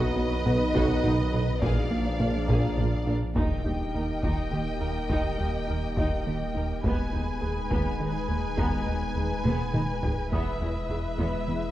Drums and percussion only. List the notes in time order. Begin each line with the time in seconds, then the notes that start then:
0.46 taiko mid
0.75 taiko
1.04 taiko mid
1.62 taiko
2.20 taiko mid
2.48 taiko
2.78 taiko mid
3.36 taiko
4.23 taiko
5.09 taiko
5.97 taiko
6.84 taiko
7.71 taiko
8.58 taiko
9.45 taiko mid
9.74 taiko mid
10.03 taiko low
10.32 taiko